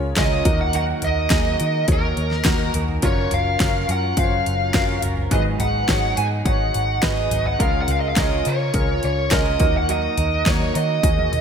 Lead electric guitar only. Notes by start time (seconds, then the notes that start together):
0.18 D#5
0.61 F#5
0.76 F#5
1.05 D#5
1.92 A#4
3.05 C#5
3.34 F5
3.91 F#5
4.19 F5
5.33 D#5
5.60 F#5
6.18 G#5
6.46 F#5
7.03 D#5
7.47 F#5
7.62 F5
7.81 F#5
7.92 F5
8.00 D#5
8.09 F5
8.19 D#5
8.48 C#5
9.05 C#5
9.34 D#5
9.77 F#5
9.91 D#5
10.49 C#5
10.76 D#5